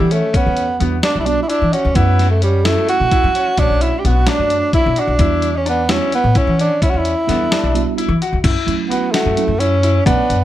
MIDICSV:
0, 0, Header, 1, 6, 480
1, 0, Start_track
1, 0, Tempo, 462963
1, 350, Time_signature, 7, 3, 24, 8
1, 10824, End_track
2, 0, Start_track
2, 0, Title_t, "Grand piano"
2, 0, Program_c, 0, 0
2, 112, Note_on_c, 0, 61, 71
2, 254, Note_off_c, 0, 61, 0
2, 345, Note_on_c, 0, 61, 86
2, 632, Note_off_c, 0, 61, 0
2, 829, Note_on_c, 0, 59, 65
2, 972, Note_off_c, 0, 59, 0
2, 1072, Note_on_c, 0, 62, 70
2, 1357, Note_off_c, 0, 62, 0
2, 1547, Note_on_c, 0, 64, 71
2, 1691, Note_off_c, 0, 64, 0
2, 1788, Note_on_c, 0, 66, 63
2, 1931, Note_off_c, 0, 66, 0
2, 2030, Note_on_c, 0, 64, 82
2, 2316, Note_off_c, 0, 64, 0
2, 2507, Note_on_c, 0, 61, 63
2, 2651, Note_off_c, 0, 61, 0
2, 2745, Note_on_c, 0, 64, 70
2, 3033, Note_off_c, 0, 64, 0
2, 3232, Note_on_c, 0, 64, 71
2, 3375, Note_off_c, 0, 64, 0
2, 3477, Note_on_c, 0, 61, 67
2, 3618, Note_off_c, 0, 61, 0
2, 3716, Note_on_c, 0, 61, 76
2, 4001, Note_off_c, 0, 61, 0
2, 4199, Note_on_c, 0, 59, 59
2, 4340, Note_off_c, 0, 59, 0
2, 4434, Note_on_c, 0, 62, 74
2, 4719, Note_off_c, 0, 62, 0
2, 4908, Note_on_c, 0, 64, 71
2, 5052, Note_off_c, 0, 64, 0
2, 5153, Note_on_c, 0, 66, 65
2, 5296, Note_off_c, 0, 66, 0
2, 5393, Note_on_c, 0, 64, 81
2, 5678, Note_off_c, 0, 64, 0
2, 5867, Note_on_c, 0, 62, 66
2, 6011, Note_off_c, 0, 62, 0
2, 6105, Note_on_c, 0, 64, 77
2, 6393, Note_off_c, 0, 64, 0
2, 6584, Note_on_c, 0, 64, 72
2, 6729, Note_off_c, 0, 64, 0
2, 6828, Note_on_c, 0, 61, 68
2, 6972, Note_off_c, 0, 61, 0
2, 7066, Note_on_c, 0, 61, 79
2, 7353, Note_off_c, 0, 61, 0
2, 7555, Note_on_c, 0, 59, 65
2, 7697, Note_off_c, 0, 59, 0
2, 7790, Note_on_c, 0, 62, 69
2, 8076, Note_off_c, 0, 62, 0
2, 8270, Note_on_c, 0, 64, 76
2, 8413, Note_off_c, 0, 64, 0
2, 8519, Note_on_c, 0, 66, 70
2, 8660, Note_off_c, 0, 66, 0
2, 8748, Note_on_c, 0, 64, 80
2, 9035, Note_off_c, 0, 64, 0
2, 9232, Note_on_c, 0, 66, 68
2, 9374, Note_off_c, 0, 66, 0
2, 9474, Note_on_c, 0, 66, 74
2, 9758, Note_off_c, 0, 66, 0
2, 9953, Note_on_c, 0, 64, 73
2, 10095, Note_off_c, 0, 64, 0
2, 10193, Note_on_c, 0, 64, 75
2, 10335, Note_off_c, 0, 64, 0
2, 10432, Note_on_c, 0, 62, 84
2, 10717, Note_off_c, 0, 62, 0
2, 10824, End_track
3, 0, Start_track
3, 0, Title_t, "Tenor saxophone"
3, 0, Program_c, 1, 66
3, 0, Note_on_c, 1, 55, 76
3, 128, Note_on_c, 1, 57, 70
3, 144, Note_off_c, 1, 55, 0
3, 380, Note_on_c, 1, 59, 73
3, 396, Note_off_c, 1, 57, 0
3, 805, Note_off_c, 1, 59, 0
3, 1076, Note_on_c, 1, 62, 83
3, 1236, Note_off_c, 1, 62, 0
3, 1242, Note_on_c, 1, 64, 61
3, 1310, Note_on_c, 1, 62, 90
3, 1325, Note_off_c, 1, 64, 0
3, 1471, Note_off_c, 1, 62, 0
3, 1477, Note_on_c, 1, 64, 59
3, 1542, Note_on_c, 1, 62, 81
3, 1557, Note_off_c, 1, 64, 0
3, 1791, Note_on_c, 1, 61, 78
3, 1807, Note_off_c, 1, 62, 0
3, 2032, Note_on_c, 1, 59, 91
3, 2047, Note_off_c, 1, 61, 0
3, 2380, Note_off_c, 1, 59, 0
3, 2386, Note_on_c, 1, 57, 71
3, 2500, Note_off_c, 1, 57, 0
3, 2522, Note_on_c, 1, 55, 77
3, 2749, Note_on_c, 1, 57, 85
3, 2765, Note_off_c, 1, 55, 0
3, 2990, Note_off_c, 1, 57, 0
3, 3000, Note_on_c, 1, 66, 107
3, 3723, Note_on_c, 1, 62, 96
3, 3739, Note_off_c, 1, 66, 0
3, 3962, Note_on_c, 1, 64, 82
3, 3977, Note_off_c, 1, 62, 0
3, 4134, Note_on_c, 1, 67, 59
3, 4149, Note_off_c, 1, 64, 0
3, 4213, Note_on_c, 1, 66, 89
3, 4228, Note_off_c, 1, 67, 0
3, 4448, Note_on_c, 1, 62, 92
3, 4464, Note_off_c, 1, 66, 0
3, 4911, Note_off_c, 1, 62, 0
3, 4917, Note_on_c, 1, 64, 88
3, 5180, Note_on_c, 1, 62, 84
3, 5195, Note_off_c, 1, 64, 0
3, 5772, Note_on_c, 1, 61, 70
3, 5787, Note_off_c, 1, 62, 0
3, 5882, Note_off_c, 1, 61, 0
3, 5902, Note_on_c, 1, 59, 75
3, 6134, Note_on_c, 1, 61, 78
3, 6150, Note_off_c, 1, 59, 0
3, 6363, Note_off_c, 1, 61, 0
3, 6374, Note_on_c, 1, 59, 90
3, 6612, Note_on_c, 1, 61, 81
3, 6628, Note_off_c, 1, 59, 0
3, 6842, Note_off_c, 1, 61, 0
3, 6849, Note_on_c, 1, 62, 83
3, 7064, Note_off_c, 1, 62, 0
3, 7078, Note_on_c, 1, 64, 68
3, 7152, Note_on_c, 1, 66, 69
3, 7168, Note_off_c, 1, 64, 0
3, 7228, Note_on_c, 1, 64, 80
3, 7243, Note_off_c, 1, 66, 0
3, 8276, Note_off_c, 1, 64, 0
3, 9222, Note_on_c, 1, 59, 73
3, 9449, Note_on_c, 1, 57, 85
3, 9465, Note_off_c, 1, 59, 0
3, 9948, Note_on_c, 1, 61, 100
3, 9963, Note_off_c, 1, 57, 0
3, 10422, Note_off_c, 1, 61, 0
3, 10429, Note_on_c, 1, 59, 78
3, 10824, Note_off_c, 1, 59, 0
3, 10824, End_track
4, 0, Start_track
4, 0, Title_t, "Tine electric piano"
4, 0, Program_c, 2, 4
4, 825, Note_on_c, 2, 55, 55
4, 836, Note_on_c, 2, 59, 50
4, 842, Note_on_c, 2, 62, 50
4, 847, Note_on_c, 2, 66, 63
4, 996, Note_off_c, 2, 55, 0
4, 1002, Note_off_c, 2, 59, 0
4, 1004, Note_off_c, 2, 62, 0
4, 1007, Note_off_c, 2, 66, 0
4, 1295, Note_on_c, 2, 55, 66
4, 1308, Note_on_c, 2, 59, 63
4, 1313, Note_on_c, 2, 62, 62
4, 1316, Note_on_c, 2, 66, 72
4, 1471, Note_off_c, 2, 55, 0
4, 1478, Note_off_c, 2, 59, 0
4, 1480, Note_off_c, 2, 62, 0
4, 1482, Note_off_c, 2, 66, 0
4, 2011, Note_on_c, 2, 57, 49
4, 2017, Note_on_c, 2, 61, 49
4, 2021, Note_on_c, 2, 64, 46
4, 2029, Note_on_c, 2, 66, 58
4, 2357, Note_off_c, 2, 57, 0
4, 2360, Note_off_c, 2, 61, 0
4, 2362, Note_off_c, 2, 64, 0
4, 2366, Note_off_c, 2, 66, 0
4, 2745, Note_on_c, 2, 57, 63
4, 2750, Note_on_c, 2, 61, 55
4, 2755, Note_on_c, 2, 64, 58
4, 2764, Note_on_c, 2, 66, 73
4, 3420, Note_off_c, 2, 57, 0
4, 3423, Note_off_c, 2, 61, 0
4, 3426, Note_off_c, 2, 64, 0
4, 3430, Note_off_c, 2, 66, 0
4, 3700, Note_on_c, 2, 57, 45
4, 3711, Note_on_c, 2, 61, 45
4, 3717, Note_on_c, 2, 62, 44
4, 3724, Note_on_c, 2, 66, 55
4, 4378, Note_off_c, 2, 57, 0
4, 4383, Note_off_c, 2, 61, 0
4, 4386, Note_off_c, 2, 62, 0
4, 4390, Note_off_c, 2, 66, 0
4, 4421, Note_on_c, 2, 57, 57
4, 4424, Note_on_c, 2, 73, 59
4, 4429, Note_on_c, 2, 62, 55
4, 4438, Note_on_c, 2, 66, 64
4, 5098, Note_off_c, 2, 57, 0
4, 5100, Note_off_c, 2, 73, 0
4, 5103, Note_off_c, 2, 62, 0
4, 5107, Note_off_c, 2, 66, 0
4, 5391, Note_on_c, 2, 55, 57
4, 5399, Note_on_c, 2, 59, 50
4, 5402, Note_on_c, 2, 62, 49
4, 5405, Note_on_c, 2, 66, 68
4, 5727, Note_off_c, 2, 55, 0
4, 5731, Note_off_c, 2, 59, 0
4, 5733, Note_off_c, 2, 62, 0
4, 5734, Note_off_c, 2, 66, 0
4, 6111, Note_on_c, 2, 55, 59
4, 6115, Note_on_c, 2, 59, 51
4, 6122, Note_on_c, 2, 62, 48
4, 6129, Note_on_c, 2, 66, 65
4, 6279, Note_off_c, 2, 55, 0
4, 6281, Note_off_c, 2, 59, 0
4, 6285, Note_off_c, 2, 62, 0
4, 6288, Note_off_c, 2, 66, 0
4, 7539, Note_on_c, 2, 55, 57
4, 7545, Note_on_c, 2, 59, 48
4, 7552, Note_on_c, 2, 62, 53
4, 7557, Note_on_c, 2, 69, 61
4, 7881, Note_off_c, 2, 55, 0
4, 7884, Note_off_c, 2, 59, 0
4, 7888, Note_off_c, 2, 62, 0
4, 7890, Note_off_c, 2, 69, 0
4, 8023, Note_on_c, 2, 55, 79
4, 8026, Note_on_c, 2, 59, 77
4, 8036, Note_on_c, 2, 62, 75
4, 8036, Note_on_c, 2, 66, 87
4, 8363, Note_off_c, 2, 55, 0
4, 8364, Note_off_c, 2, 59, 0
4, 8370, Note_off_c, 2, 62, 0
4, 8370, Note_off_c, 2, 66, 0
4, 8980, Note_on_c, 2, 54, 66
4, 8985, Note_on_c, 2, 57, 67
4, 8993, Note_on_c, 2, 61, 61
4, 8999, Note_on_c, 2, 64, 72
4, 9657, Note_off_c, 2, 54, 0
4, 9660, Note_off_c, 2, 57, 0
4, 9664, Note_off_c, 2, 61, 0
4, 9667, Note_off_c, 2, 64, 0
4, 9706, Note_on_c, 2, 54, 73
4, 9713, Note_on_c, 2, 57, 61
4, 9718, Note_on_c, 2, 61, 72
4, 9731, Note_on_c, 2, 64, 80
4, 9877, Note_off_c, 2, 54, 0
4, 9880, Note_off_c, 2, 57, 0
4, 9882, Note_off_c, 2, 61, 0
4, 9889, Note_off_c, 2, 64, 0
4, 10424, Note_on_c, 2, 54, 63
4, 10431, Note_on_c, 2, 57, 60
4, 10436, Note_on_c, 2, 61, 55
4, 10441, Note_on_c, 2, 62, 62
4, 10595, Note_off_c, 2, 54, 0
4, 10598, Note_off_c, 2, 57, 0
4, 10601, Note_off_c, 2, 61, 0
4, 10604, Note_off_c, 2, 62, 0
4, 10824, End_track
5, 0, Start_track
5, 0, Title_t, "Upright bass"
5, 0, Program_c, 3, 32
5, 0, Note_on_c, 3, 52, 88
5, 199, Note_off_c, 3, 52, 0
5, 480, Note_on_c, 3, 40, 76
5, 680, Note_off_c, 3, 40, 0
5, 838, Note_on_c, 3, 40, 83
5, 1039, Note_off_c, 3, 40, 0
5, 1199, Note_on_c, 3, 35, 66
5, 1399, Note_off_c, 3, 35, 0
5, 1678, Note_on_c, 3, 52, 80
5, 1777, Note_off_c, 3, 52, 0
5, 1917, Note_on_c, 3, 38, 79
5, 2016, Note_off_c, 3, 38, 0
5, 2027, Note_on_c, 3, 42, 80
5, 2844, Note_off_c, 3, 42, 0
5, 3115, Note_on_c, 3, 47, 73
5, 3215, Note_off_c, 3, 47, 0
5, 3360, Note_on_c, 3, 54, 90
5, 3560, Note_off_c, 3, 54, 0
5, 3710, Note_on_c, 3, 35, 83
5, 3813, Note_off_c, 3, 35, 0
5, 3835, Note_on_c, 3, 35, 66
5, 4037, Note_off_c, 3, 35, 0
5, 4195, Note_on_c, 3, 35, 86
5, 4397, Note_off_c, 3, 35, 0
5, 4550, Note_on_c, 3, 42, 65
5, 4755, Note_off_c, 3, 42, 0
5, 5041, Note_on_c, 3, 47, 86
5, 5139, Note_off_c, 3, 47, 0
5, 5260, Note_on_c, 3, 35, 81
5, 5367, Note_off_c, 3, 35, 0
5, 5383, Note_on_c, 3, 40, 84
5, 6201, Note_off_c, 3, 40, 0
5, 6468, Note_on_c, 3, 45, 81
5, 6572, Note_off_c, 3, 45, 0
5, 6709, Note_on_c, 3, 52, 91
5, 6914, Note_off_c, 3, 52, 0
5, 7193, Note_on_c, 3, 40, 71
5, 7396, Note_off_c, 3, 40, 0
5, 7551, Note_on_c, 3, 40, 81
5, 7755, Note_off_c, 3, 40, 0
5, 7916, Note_on_c, 3, 35, 68
5, 8118, Note_off_c, 3, 35, 0
5, 8382, Note_on_c, 3, 52, 85
5, 8488, Note_off_c, 3, 52, 0
5, 8633, Note_on_c, 3, 38, 75
5, 8734, Note_off_c, 3, 38, 0
5, 8751, Note_on_c, 3, 42, 92
5, 8853, Note_off_c, 3, 42, 0
5, 8990, Note_on_c, 3, 37, 75
5, 9194, Note_off_c, 3, 37, 0
5, 9595, Note_on_c, 3, 42, 70
5, 9695, Note_off_c, 3, 42, 0
5, 9826, Note_on_c, 3, 42, 77
5, 10337, Note_off_c, 3, 42, 0
5, 10436, Note_on_c, 3, 35, 90
5, 10535, Note_off_c, 3, 35, 0
5, 10676, Note_on_c, 3, 42, 72
5, 10824, Note_off_c, 3, 42, 0
5, 10824, End_track
6, 0, Start_track
6, 0, Title_t, "Drums"
6, 115, Note_on_c, 9, 42, 57
6, 219, Note_off_c, 9, 42, 0
6, 353, Note_on_c, 9, 36, 95
6, 355, Note_on_c, 9, 42, 67
6, 456, Note_off_c, 9, 36, 0
6, 459, Note_off_c, 9, 42, 0
6, 587, Note_on_c, 9, 42, 50
6, 691, Note_off_c, 9, 42, 0
6, 835, Note_on_c, 9, 42, 53
6, 938, Note_off_c, 9, 42, 0
6, 1070, Note_on_c, 9, 38, 99
6, 1070, Note_on_c, 9, 42, 73
6, 1174, Note_off_c, 9, 38, 0
6, 1174, Note_off_c, 9, 42, 0
6, 1310, Note_on_c, 9, 42, 53
6, 1413, Note_off_c, 9, 42, 0
6, 1551, Note_on_c, 9, 42, 63
6, 1654, Note_off_c, 9, 42, 0
6, 1795, Note_on_c, 9, 42, 56
6, 1899, Note_off_c, 9, 42, 0
6, 2025, Note_on_c, 9, 42, 64
6, 2029, Note_on_c, 9, 36, 91
6, 2129, Note_off_c, 9, 42, 0
6, 2132, Note_off_c, 9, 36, 0
6, 2275, Note_on_c, 9, 38, 29
6, 2275, Note_on_c, 9, 42, 58
6, 2378, Note_off_c, 9, 38, 0
6, 2378, Note_off_c, 9, 42, 0
6, 2510, Note_on_c, 9, 42, 59
6, 2613, Note_off_c, 9, 42, 0
6, 2750, Note_on_c, 9, 38, 98
6, 2750, Note_on_c, 9, 42, 79
6, 2853, Note_off_c, 9, 38, 0
6, 2853, Note_off_c, 9, 42, 0
6, 2992, Note_on_c, 9, 42, 59
6, 3096, Note_off_c, 9, 42, 0
6, 3230, Note_on_c, 9, 36, 84
6, 3230, Note_on_c, 9, 42, 69
6, 3334, Note_off_c, 9, 36, 0
6, 3334, Note_off_c, 9, 42, 0
6, 3474, Note_on_c, 9, 42, 60
6, 3578, Note_off_c, 9, 42, 0
6, 3707, Note_on_c, 9, 42, 72
6, 3709, Note_on_c, 9, 36, 88
6, 3811, Note_off_c, 9, 42, 0
6, 3813, Note_off_c, 9, 36, 0
6, 3952, Note_on_c, 9, 42, 58
6, 4056, Note_off_c, 9, 42, 0
6, 4198, Note_on_c, 9, 42, 59
6, 4302, Note_off_c, 9, 42, 0
6, 4423, Note_on_c, 9, 38, 89
6, 4423, Note_on_c, 9, 42, 75
6, 4527, Note_off_c, 9, 38, 0
6, 4527, Note_off_c, 9, 42, 0
6, 4668, Note_on_c, 9, 42, 55
6, 4772, Note_off_c, 9, 42, 0
6, 4907, Note_on_c, 9, 36, 82
6, 4907, Note_on_c, 9, 42, 61
6, 5010, Note_off_c, 9, 36, 0
6, 5011, Note_off_c, 9, 42, 0
6, 5145, Note_on_c, 9, 42, 53
6, 5249, Note_off_c, 9, 42, 0
6, 5380, Note_on_c, 9, 42, 70
6, 5383, Note_on_c, 9, 36, 91
6, 5484, Note_off_c, 9, 42, 0
6, 5486, Note_off_c, 9, 36, 0
6, 5623, Note_on_c, 9, 42, 57
6, 5727, Note_off_c, 9, 42, 0
6, 5871, Note_on_c, 9, 42, 57
6, 5974, Note_off_c, 9, 42, 0
6, 6107, Note_on_c, 9, 38, 99
6, 6107, Note_on_c, 9, 42, 73
6, 6211, Note_off_c, 9, 38, 0
6, 6211, Note_off_c, 9, 42, 0
6, 6349, Note_on_c, 9, 42, 58
6, 6453, Note_off_c, 9, 42, 0
6, 6585, Note_on_c, 9, 42, 65
6, 6587, Note_on_c, 9, 36, 86
6, 6689, Note_off_c, 9, 42, 0
6, 6691, Note_off_c, 9, 36, 0
6, 6837, Note_on_c, 9, 42, 58
6, 6941, Note_off_c, 9, 42, 0
6, 7070, Note_on_c, 9, 36, 90
6, 7075, Note_on_c, 9, 42, 70
6, 7174, Note_off_c, 9, 36, 0
6, 7179, Note_off_c, 9, 42, 0
6, 7310, Note_on_c, 9, 42, 56
6, 7414, Note_off_c, 9, 42, 0
6, 7558, Note_on_c, 9, 38, 32
6, 7558, Note_on_c, 9, 42, 60
6, 7661, Note_off_c, 9, 38, 0
6, 7661, Note_off_c, 9, 42, 0
6, 7796, Note_on_c, 9, 38, 107
6, 7796, Note_on_c, 9, 42, 74
6, 7900, Note_off_c, 9, 38, 0
6, 7900, Note_off_c, 9, 42, 0
6, 8039, Note_on_c, 9, 42, 62
6, 8143, Note_off_c, 9, 42, 0
6, 8277, Note_on_c, 9, 42, 68
6, 8381, Note_off_c, 9, 42, 0
6, 8522, Note_on_c, 9, 42, 54
6, 8625, Note_off_c, 9, 42, 0
6, 8751, Note_on_c, 9, 36, 96
6, 8751, Note_on_c, 9, 42, 76
6, 8751, Note_on_c, 9, 49, 89
6, 8854, Note_off_c, 9, 36, 0
6, 8855, Note_off_c, 9, 42, 0
6, 8855, Note_off_c, 9, 49, 0
6, 8998, Note_on_c, 9, 42, 54
6, 9101, Note_off_c, 9, 42, 0
6, 9243, Note_on_c, 9, 42, 60
6, 9347, Note_off_c, 9, 42, 0
6, 9477, Note_on_c, 9, 38, 104
6, 9477, Note_on_c, 9, 42, 75
6, 9581, Note_off_c, 9, 38, 0
6, 9581, Note_off_c, 9, 42, 0
6, 9717, Note_on_c, 9, 42, 59
6, 9821, Note_off_c, 9, 42, 0
6, 9958, Note_on_c, 9, 42, 69
6, 10061, Note_off_c, 9, 42, 0
6, 10196, Note_on_c, 9, 42, 66
6, 10299, Note_off_c, 9, 42, 0
6, 10431, Note_on_c, 9, 36, 99
6, 10438, Note_on_c, 9, 42, 80
6, 10535, Note_off_c, 9, 36, 0
6, 10542, Note_off_c, 9, 42, 0
6, 10680, Note_on_c, 9, 42, 61
6, 10783, Note_off_c, 9, 42, 0
6, 10824, End_track
0, 0, End_of_file